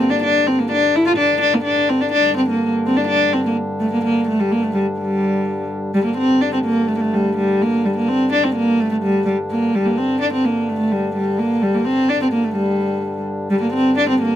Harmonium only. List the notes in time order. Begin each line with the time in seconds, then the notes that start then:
Already playing: G2 D3
2.14 G2 D3
5.93 G2 D3
9.74 G2 D3
13.50 G2 D3